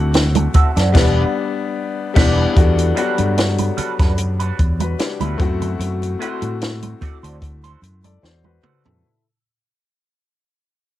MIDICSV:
0, 0, Header, 1, 9, 480
1, 0, Start_track
1, 0, Key_signature, 1, "minor"
1, 0, Tempo, 808625
1, 1523, Time_signature, 4, 2, 24, 8
1, 6529, End_track
2, 0, Start_track
2, 0, Title_t, "Grand piano"
2, 0, Program_c, 0, 0
2, 0, Note_on_c, 0, 78, 91
2, 1018, Note_off_c, 0, 78, 0
2, 6529, End_track
3, 0, Start_track
3, 0, Title_t, "Clean electric guitar"
3, 0, Program_c, 1, 27
3, 324, Note_on_c, 1, 60, 57
3, 329, Note_on_c, 1, 66, 65
3, 331, Note_on_c, 1, 69, 62
3, 335, Note_on_c, 1, 76, 64
3, 412, Note_off_c, 1, 60, 0
3, 415, Note_off_c, 1, 66, 0
3, 416, Note_off_c, 1, 69, 0
3, 418, Note_off_c, 1, 76, 0
3, 454, Note_on_c, 1, 74, 58
3, 458, Note_on_c, 1, 69, 53
3, 461, Note_on_c, 1, 66, 51
3, 464, Note_on_c, 1, 60, 45
3, 529, Note_off_c, 1, 74, 0
3, 531, Note_off_c, 1, 69, 0
3, 532, Note_off_c, 1, 66, 0
3, 534, Note_off_c, 1, 60, 0
3, 563, Note_on_c, 1, 74, 93
3, 567, Note_on_c, 1, 71, 94
3, 570, Note_on_c, 1, 67, 87
3, 573, Note_on_c, 1, 62, 83
3, 730, Note_off_c, 1, 74, 0
3, 732, Note_off_c, 1, 71, 0
3, 734, Note_off_c, 1, 67, 0
3, 735, Note_off_c, 1, 62, 0
3, 1285, Note_on_c, 1, 62, 83
3, 1288, Note_on_c, 1, 67, 93
3, 1289, Note_on_c, 1, 71, 88
3, 1292, Note_on_c, 1, 74, 88
3, 1450, Note_off_c, 1, 62, 0
3, 1452, Note_off_c, 1, 67, 0
3, 1453, Note_off_c, 1, 71, 0
3, 1455, Note_off_c, 1, 74, 0
3, 1760, Note_on_c, 1, 55, 73
3, 1763, Note_on_c, 1, 62, 85
3, 1766, Note_on_c, 1, 66, 93
3, 1770, Note_on_c, 1, 71, 89
3, 1875, Note_off_c, 1, 55, 0
3, 1876, Note_off_c, 1, 62, 0
3, 1878, Note_off_c, 1, 66, 0
3, 1880, Note_off_c, 1, 71, 0
3, 2239, Note_on_c, 1, 55, 63
3, 2244, Note_on_c, 1, 62, 68
3, 2246, Note_on_c, 1, 66, 60
3, 2250, Note_on_c, 1, 71, 67
3, 2330, Note_off_c, 1, 55, 0
3, 2332, Note_off_c, 1, 62, 0
3, 2333, Note_off_c, 1, 66, 0
3, 2335, Note_off_c, 1, 71, 0
3, 2371, Note_on_c, 1, 71, 60
3, 2376, Note_on_c, 1, 66, 54
3, 2379, Note_on_c, 1, 62, 52
3, 2381, Note_on_c, 1, 55, 47
3, 2448, Note_off_c, 1, 71, 0
3, 2450, Note_off_c, 1, 66, 0
3, 2451, Note_off_c, 1, 62, 0
3, 2452, Note_off_c, 1, 55, 0
3, 2610, Note_on_c, 1, 71, 68
3, 2613, Note_on_c, 1, 66, 66
3, 2617, Note_on_c, 1, 62, 64
3, 2619, Note_on_c, 1, 55, 55
3, 2708, Note_off_c, 1, 71, 0
3, 2709, Note_off_c, 1, 66, 0
3, 2711, Note_off_c, 1, 62, 0
3, 2712, Note_off_c, 1, 55, 0
3, 3091, Note_on_c, 1, 71, 75
3, 3096, Note_on_c, 1, 66, 69
3, 3098, Note_on_c, 1, 62, 67
3, 3102, Note_on_c, 1, 55, 60
3, 3188, Note_off_c, 1, 71, 0
3, 3191, Note_off_c, 1, 66, 0
3, 3192, Note_off_c, 1, 62, 0
3, 3194, Note_off_c, 1, 55, 0
3, 3682, Note_on_c, 1, 57, 85
3, 3686, Note_on_c, 1, 62, 87
3, 3690, Note_on_c, 1, 66, 84
3, 3691, Note_on_c, 1, 72, 92
3, 3811, Note_off_c, 1, 57, 0
3, 3813, Note_off_c, 1, 62, 0
3, 3815, Note_off_c, 1, 66, 0
3, 3815, Note_off_c, 1, 72, 0
3, 4165, Note_on_c, 1, 57, 53
3, 4168, Note_on_c, 1, 62, 46
3, 4171, Note_on_c, 1, 66, 56
3, 4174, Note_on_c, 1, 74, 60
3, 4253, Note_off_c, 1, 57, 0
3, 4255, Note_off_c, 1, 62, 0
3, 4256, Note_off_c, 1, 66, 0
3, 4258, Note_off_c, 1, 74, 0
3, 4293, Note_on_c, 1, 72, 51
3, 4297, Note_on_c, 1, 66, 48
3, 4301, Note_on_c, 1, 62, 47
3, 4302, Note_on_c, 1, 57, 50
3, 4369, Note_off_c, 1, 72, 0
3, 4371, Note_off_c, 1, 66, 0
3, 4373, Note_off_c, 1, 57, 0
3, 4373, Note_off_c, 1, 62, 0
3, 4534, Note_on_c, 1, 72, 73
3, 4537, Note_on_c, 1, 66, 67
3, 4540, Note_on_c, 1, 62, 61
3, 4543, Note_on_c, 1, 57, 62
3, 4631, Note_off_c, 1, 72, 0
3, 4632, Note_off_c, 1, 66, 0
3, 4634, Note_off_c, 1, 62, 0
3, 4635, Note_off_c, 1, 57, 0
3, 5124, Note_on_c, 1, 57, 66
3, 5128, Note_on_c, 1, 62, 66
3, 5131, Note_on_c, 1, 66, 63
3, 5133, Note_on_c, 1, 72, 69
3, 5238, Note_off_c, 1, 57, 0
3, 5240, Note_off_c, 1, 62, 0
3, 5241, Note_off_c, 1, 66, 0
3, 5243, Note_off_c, 1, 72, 0
3, 6529, End_track
4, 0, Start_track
4, 0, Title_t, "Vibraphone"
4, 0, Program_c, 2, 11
4, 330, Note_on_c, 2, 78, 55
4, 783, Note_off_c, 2, 78, 0
4, 1282, Note_on_c, 2, 64, 58
4, 1521, Note_on_c, 2, 69, 64
4, 1739, Note_off_c, 2, 64, 0
4, 2561, Note_off_c, 2, 69, 0
4, 3209, Note_on_c, 2, 66, 65
4, 3920, Note_on_c, 2, 64, 57
4, 4246, Note_off_c, 2, 66, 0
4, 4962, Note_off_c, 2, 64, 0
4, 6529, End_track
5, 0, Start_track
5, 0, Title_t, "Grand piano"
5, 0, Program_c, 3, 0
5, 0, Control_c, 3, 64, 127
5, 0, Note_on_c, 3, 57, 80
5, 0, Note_on_c, 3, 60, 74
5, 0, Note_on_c, 3, 64, 77
5, 0, Note_on_c, 3, 66, 84
5, 386, Note_off_c, 3, 57, 0
5, 390, Note_off_c, 3, 60, 0
5, 394, Note_off_c, 3, 64, 0
5, 397, Note_off_c, 3, 66, 0
5, 548, Note_on_c, 3, 55, 100
5, 556, Note_on_c, 3, 59, 107
5, 562, Note_on_c, 3, 62, 105
5, 572, Control_c, 3, 64, 0
5, 663, Control_c, 3, 64, 127
5, 721, Note_off_c, 3, 55, 0
5, 726, Note_off_c, 3, 59, 0
5, 729, Note_off_c, 3, 62, 0
5, 1270, Note_on_c, 3, 55, 105
5, 1278, Note_on_c, 3, 59, 110
5, 1284, Note_on_c, 3, 62, 108
5, 1442, Note_off_c, 3, 55, 0
5, 1446, Note_off_c, 3, 59, 0
5, 1450, Note_off_c, 3, 62, 0
5, 1508, Note_on_c, 3, 55, 91
5, 1514, Note_on_c, 3, 59, 75
5, 1524, Note_on_c, 3, 62, 83
5, 1530, Control_c, 3, 64, 0
5, 1530, Note_on_c, 3, 66, 99
5, 1628, Control_c, 3, 64, 127
5, 1715, Note_off_c, 3, 55, 0
5, 1718, Note_off_c, 3, 59, 0
5, 1723, Note_off_c, 3, 62, 0
5, 1726, Note_off_c, 3, 66, 0
5, 1750, Note_on_c, 3, 54, 75
5, 1755, Note_on_c, 3, 59, 87
5, 1763, Note_on_c, 3, 62, 87
5, 1771, Note_on_c, 3, 66, 95
5, 1788, Note_on_c, 3, 67, 81
5, 1798, Note_off_c, 3, 54, 0
5, 2549, Note_off_c, 3, 59, 0
5, 2553, Note_off_c, 3, 62, 0
5, 2557, Note_off_c, 3, 66, 0
5, 2565, Note_off_c, 3, 67, 0
5, 2854, Note_on_c, 3, 71, 68
5, 2858, Note_on_c, 3, 66, 53
5, 2958, Note_off_c, 3, 71, 0
5, 2961, Note_off_c, 3, 66, 0
5, 2963, Note_on_c, 3, 67, 68
5, 2969, Note_on_c, 3, 62, 57
5, 3086, Note_off_c, 3, 67, 0
5, 3090, Note_off_c, 3, 62, 0
5, 3094, Note_on_c, 3, 64, 68
5, 3096, Note_on_c, 3, 59, 58
5, 3193, Note_on_c, 3, 57, 99
5, 3199, Note_on_c, 3, 60, 93
5, 3201, Note_off_c, 3, 64, 0
5, 3210, Note_on_c, 3, 64, 86
5, 3212, Control_c, 3, 64, 0
5, 3215, Note_on_c, 3, 66, 110
5, 3323, Note_off_c, 3, 59, 0
5, 3323, Control_c, 3, 64, 127
5, 3598, Note_off_c, 3, 57, 0
5, 3601, Note_off_c, 3, 60, 0
5, 3606, Note_off_c, 3, 64, 0
5, 3609, Note_off_c, 3, 66, 0
5, 3675, Note_on_c, 3, 57, 81
5, 3683, Note_on_c, 3, 60, 78
5, 3690, Note_on_c, 3, 64, 82
5, 3695, Note_on_c, 3, 66, 102
5, 4470, Note_off_c, 3, 57, 0
5, 4474, Note_off_c, 3, 60, 0
5, 4477, Note_off_c, 3, 64, 0
5, 4480, Note_off_c, 3, 66, 0
5, 4777, Note_on_c, 3, 74, 61
5, 4780, Note_on_c, 3, 69, 50
5, 4881, Note_off_c, 3, 74, 0
5, 4882, Note_off_c, 3, 69, 0
5, 4887, Note_on_c, 3, 72, 70
5, 4890, Note_on_c, 3, 66, 57
5, 5009, Note_off_c, 3, 72, 0
5, 5010, Note_off_c, 3, 66, 0
5, 5015, Note_on_c, 3, 71, 62
5, 5019, Note_on_c, 3, 66, 58
5, 5243, Note_off_c, 3, 71, 0
5, 5245, Note_off_c, 3, 66, 0
5, 5253, Note_on_c, 3, 69, 62
5, 5257, Note_on_c, 3, 64, 53
5, 5372, Control_c, 3, 64, 0
5, 5482, Note_off_c, 3, 69, 0
5, 5485, Note_off_c, 3, 64, 0
5, 6529, End_track
6, 0, Start_track
6, 0, Title_t, "Fingered electric bass"
6, 0, Program_c, 4, 33
6, 0, Note_on_c, 4, 38, 101
6, 275, Note_off_c, 4, 38, 0
6, 456, Note_on_c, 4, 42, 96
6, 549, Note_off_c, 4, 42, 0
6, 564, Note_on_c, 4, 28, 103
6, 730, Note_off_c, 4, 28, 0
6, 1284, Note_on_c, 4, 28, 100
6, 1450, Note_off_c, 4, 28, 0
6, 1524, Note_on_c, 4, 40, 106
6, 1730, Note_off_c, 4, 40, 0
6, 1894, Note_on_c, 4, 43, 96
6, 2195, Note_off_c, 4, 43, 0
6, 2372, Note_on_c, 4, 42, 81
6, 2674, Note_off_c, 4, 42, 0
6, 2727, Note_on_c, 4, 40, 96
6, 2932, Note_off_c, 4, 40, 0
6, 3092, Note_on_c, 4, 38, 96
6, 3187, Note_off_c, 4, 38, 0
6, 3205, Note_on_c, 4, 42, 103
6, 3411, Note_off_c, 4, 42, 0
6, 3440, Note_on_c, 4, 42, 108
6, 3648, Note_off_c, 4, 42, 0
6, 3812, Note_on_c, 4, 45, 88
6, 4114, Note_off_c, 4, 45, 0
6, 4294, Note_on_c, 4, 38, 76
6, 4596, Note_off_c, 4, 38, 0
6, 4642, Note_on_c, 4, 42, 94
6, 4850, Note_off_c, 4, 42, 0
6, 4886, Note_on_c, 4, 40, 87
6, 5092, Note_off_c, 4, 40, 0
6, 5258, Note_on_c, 4, 41, 79
6, 5352, Note_off_c, 4, 41, 0
6, 6529, End_track
7, 0, Start_track
7, 0, Title_t, "Muted clean electric guitar strokes"
7, 84, Note_on_c, 9, 29, 38
7, 143, Note_off_c, 9, 29, 0
7, 212, Note_on_c, 9, 29, 45
7, 272, Note_off_c, 9, 29, 0
7, 2002, Note_on_c, 9, 29, 42
7, 2061, Note_off_c, 9, 29, 0
7, 2132, Note_on_c, 9, 29, 38
7, 2192, Note_off_c, 9, 29, 0
7, 2485, Note_on_c, 9, 29, 41
7, 2544, Note_off_c, 9, 29, 0
7, 2723, Note_on_c, 9, 29, 35
7, 2782, Note_off_c, 9, 29, 0
7, 2852, Note_on_c, 9, 29, 39
7, 2912, Note_off_c, 9, 29, 0
7, 2963, Note_on_c, 9, 29, 39
7, 3022, Note_off_c, 9, 29, 0
7, 3202, Note_on_c, 9, 29, 41
7, 3262, Note_off_c, 9, 29, 0
7, 3334, Note_on_c, 9, 29, 47
7, 3394, Note_off_c, 9, 29, 0
7, 3926, Note_on_c, 9, 29, 45
7, 3985, Note_off_c, 9, 29, 0
7, 4056, Note_on_c, 9, 29, 33
7, 4116, Note_off_c, 9, 29, 0
7, 4404, Note_on_c, 9, 29, 41
7, 4463, Note_off_c, 9, 29, 0
7, 4645, Note_on_c, 9, 29, 35
7, 4704, Note_off_c, 9, 29, 0
7, 4774, Note_on_c, 9, 29, 37
7, 4834, Note_off_c, 9, 29, 0
7, 4883, Note_on_c, 9, 29, 41
7, 4942, Note_off_c, 9, 29, 0
7, 5015, Note_on_c, 9, 29, 40
7, 5074, Note_off_c, 9, 29, 0
7, 5254, Note_on_c, 9, 29, 43
7, 5313, Note_off_c, 9, 29, 0
7, 6529, End_track
8, 0, Start_track
8, 0, Title_t, "Muted fingered electric bass strokes"
8, 326, Note_on_c, 9, 29, 50
8, 385, Note_off_c, 9, 29, 0
8, 2245, Note_on_c, 9, 29, 46
8, 2305, Note_off_c, 9, 29, 0
8, 4167, Note_on_c, 9, 29, 44
8, 4226, Note_off_c, 9, 29, 0
8, 6529, End_track
9, 0, Start_track
9, 0, Title_t, "Drums"
9, 82, Note_on_c, 9, 42, 83
9, 85, Note_on_c, 9, 62, 33
9, 90, Note_on_c, 9, 38, 123
9, 141, Note_off_c, 9, 42, 0
9, 144, Note_off_c, 9, 62, 0
9, 150, Note_off_c, 9, 38, 0
9, 207, Note_on_c, 9, 42, 70
9, 211, Note_on_c, 9, 62, 32
9, 211, Note_on_c, 9, 63, 72
9, 211, Note_on_c, 9, 64, 68
9, 266, Note_off_c, 9, 42, 0
9, 270, Note_off_c, 9, 62, 0
9, 270, Note_off_c, 9, 63, 0
9, 270, Note_off_c, 9, 64, 0
9, 321, Note_on_c, 9, 42, 69
9, 321, Note_on_c, 9, 64, 72
9, 325, Note_on_c, 9, 36, 98
9, 380, Note_off_c, 9, 42, 0
9, 380, Note_off_c, 9, 64, 0
9, 384, Note_off_c, 9, 36, 0
9, 456, Note_on_c, 9, 42, 52
9, 463, Note_on_c, 9, 38, 36
9, 515, Note_off_c, 9, 42, 0
9, 522, Note_off_c, 9, 38, 0
9, 563, Note_on_c, 9, 36, 98
9, 563, Note_on_c, 9, 49, 77
9, 572, Note_on_c, 9, 38, 108
9, 622, Note_off_c, 9, 49, 0
9, 623, Note_off_c, 9, 36, 0
9, 631, Note_off_c, 9, 38, 0
9, 1284, Note_on_c, 9, 36, 106
9, 1284, Note_on_c, 9, 49, 88
9, 1293, Note_on_c, 9, 38, 99
9, 1343, Note_off_c, 9, 36, 0
9, 1343, Note_off_c, 9, 49, 0
9, 1352, Note_off_c, 9, 38, 0
9, 1522, Note_on_c, 9, 42, 88
9, 1523, Note_on_c, 9, 36, 94
9, 1582, Note_off_c, 9, 36, 0
9, 1582, Note_off_c, 9, 42, 0
9, 1653, Note_on_c, 9, 62, 31
9, 1654, Note_on_c, 9, 42, 57
9, 1712, Note_off_c, 9, 62, 0
9, 1713, Note_off_c, 9, 42, 0
9, 1763, Note_on_c, 9, 42, 64
9, 1822, Note_off_c, 9, 42, 0
9, 1888, Note_on_c, 9, 42, 50
9, 1890, Note_on_c, 9, 63, 54
9, 1947, Note_off_c, 9, 42, 0
9, 1949, Note_off_c, 9, 63, 0
9, 2004, Note_on_c, 9, 42, 82
9, 2006, Note_on_c, 9, 62, 37
9, 2012, Note_on_c, 9, 38, 126
9, 2064, Note_off_c, 9, 42, 0
9, 2065, Note_off_c, 9, 62, 0
9, 2072, Note_off_c, 9, 38, 0
9, 2127, Note_on_c, 9, 42, 62
9, 2132, Note_on_c, 9, 63, 73
9, 2186, Note_off_c, 9, 42, 0
9, 2192, Note_off_c, 9, 63, 0
9, 2242, Note_on_c, 9, 42, 66
9, 2242, Note_on_c, 9, 64, 73
9, 2302, Note_off_c, 9, 42, 0
9, 2302, Note_off_c, 9, 64, 0
9, 2371, Note_on_c, 9, 36, 89
9, 2371, Note_on_c, 9, 42, 52
9, 2378, Note_on_c, 9, 38, 34
9, 2430, Note_off_c, 9, 42, 0
9, 2431, Note_off_c, 9, 36, 0
9, 2438, Note_off_c, 9, 38, 0
9, 2480, Note_on_c, 9, 42, 102
9, 2481, Note_on_c, 9, 62, 30
9, 2539, Note_off_c, 9, 42, 0
9, 2540, Note_off_c, 9, 62, 0
9, 2611, Note_on_c, 9, 42, 49
9, 2671, Note_off_c, 9, 42, 0
9, 2726, Note_on_c, 9, 36, 87
9, 2726, Note_on_c, 9, 42, 63
9, 2785, Note_off_c, 9, 36, 0
9, 2786, Note_off_c, 9, 42, 0
9, 2849, Note_on_c, 9, 63, 77
9, 2851, Note_on_c, 9, 42, 57
9, 2909, Note_off_c, 9, 63, 0
9, 2910, Note_off_c, 9, 42, 0
9, 2964, Note_on_c, 9, 42, 97
9, 2970, Note_on_c, 9, 38, 115
9, 3024, Note_off_c, 9, 42, 0
9, 3030, Note_off_c, 9, 38, 0
9, 3090, Note_on_c, 9, 63, 76
9, 3091, Note_on_c, 9, 42, 48
9, 3149, Note_off_c, 9, 63, 0
9, 3150, Note_off_c, 9, 42, 0
9, 3202, Note_on_c, 9, 42, 73
9, 3204, Note_on_c, 9, 36, 99
9, 3262, Note_off_c, 9, 42, 0
9, 3263, Note_off_c, 9, 36, 0
9, 3334, Note_on_c, 9, 42, 41
9, 3334, Note_on_c, 9, 64, 72
9, 3393, Note_off_c, 9, 42, 0
9, 3393, Note_off_c, 9, 64, 0
9, 3445, Note_on_c, 9, 42, 75
9, 3504, Note_off_c, 9, 42, 0
9, 3574, Note_on_c, 9, 62, 30
9, 3578, Note_on_c, 9, 42, 50
9, 3633, Note_off_c, 9, 62, 0
9, 3638, Note_off_c, 9, 42, 0
9, 3689, Note_on_c, 9, 42, 64
9, 3748, Note_off_c, 9, 42, 0
9, 3810, Note_on_c, 9, 42, 48
9, 3812, Note_on_c, 9, 63, 50
9, 3869, Note_off_c, 9, 42, 0
9, 3871, Note_off_c, 9, 63, 0
9, 3926, Note_on_c, 9, 42, 88
9, 3934, Note_on_c, 9, 38, 110
9, 3986, Note_off_c, 9, 42, 0
9, 3994, Note_off_c, 9, 38, 0
9, 4051, Note_on_c, 9, 42, 58
9, 4053, Note_on_c, 9, 63, 71
9, 4111, Note_off_c, 9, 42, 0
9, 4112, Note_off_c, 9, 63, 0
9, 4163, Note_on_c, 9, 64, 70
9, 4166, Note_on_c, 9, 42, 71
9, 4167, Note_on_c, 9, 36, 89
9, 4222, Note_off_c, 9, 64, 0
9, 4226, Note_off_c, 9, 36, 0
9, 4226, Note_off_c, 9, 42, 0
9, 4299, Note_on_c, 9, 42, 51
9, 4358, Note_off_c, 9, 42, 0
9, 4405, Note_on_c, 9, 36, 89
9, 4405, Note_on_c, 9, 42, 97
9, 4464, Note_off_c, 9, 36, 0
9, 4464, Note_off_c, 9, 42, 0
9, 4535, Note_on_c, 9, 42, 46
9, 4536, Note_on_c, 9, 62, 28
9, 4594, Note_off_c, 9, 42, 0
9, 4595, Note_off_c, 9, 62, 0
9, 4651, Note_on_c, 9, 42, 59
9, 4710, Note_off_c, 9, 42, 0
9, 4773, Note_on_c, 9, 63, 65
9, 4774, Note_on_c, 9, 42, 54
9, 4833, Note_off_c, 9, 42, 0
9, 4833, Note_off_c, 9, 63, 0
9, 4894, Note_on_c, 9, 38, 57
9, 4953, Note_off_c, 9, 38, 0
9, 5012, Note_on_c, 9, 63, 70
9, 5071, Note_off_c, 9, 63, 0
9, 5126, Note_on_c, 9, 45, 87
9, 5185, Note_off_c, 9, 45, 0
9, 5254, Note_on_c, 9, 64, 74
9, 5257, Note_on_c, 9, 43, 85
9, 5314, Note_off_c, 9, 64, 0
9, 5317, Note_off_c, 9, 43, 0
9, 6529, End_track
0, 0, End_of_file